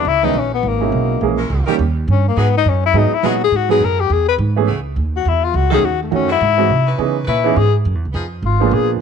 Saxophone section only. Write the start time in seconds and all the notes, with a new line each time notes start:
0.22 E3 C#4 D#4 B4
1.38 G#3 C#4 E4 A#4
1.66 G3 C#4 D#4 A#4
2.36 F#3 B3 D#4 G#4
3.23 F#3 B3 D#4 G#4
3.69 F#3 B3 D#4 G#4
4.66 C#3 A3 B3 G#4
5.70 D#3 A3 C#4 A4
6.27 E3 G#3 C4 F#4
6.86 E3 C#4 D#4 B4
7.26 E3 C#4 D#4 B4
8.13 F3 B3 D#4 G#4